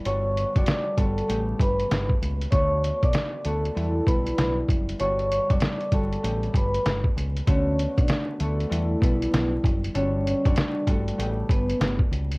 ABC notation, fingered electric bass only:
X:1
M:4/4
L:1/16
Q:"Swing 16ths" 1/4=97
K:D
V:1 name="Fingered electric bass" clef=bass
G,,,3 F,,, z2 G,,,2 A,,,2 G,,,2 G,,,2 C,,2 | D,,3 B,,, z2 D,,2 E,,2 B,,,2 B,,,2 F,,,2 | G,,,3 F,,, z2 G,,,2 A,,,2 G,,,2 G,,,2 C,,2 | D,,3 B,,, z2 D,,2 E,,2 B,,,2 B,,,2 F,,,2 |
G,,,3 F,,, z2 G,,,2 A,,,2 G,,,2 G,,,2 C,,2 |]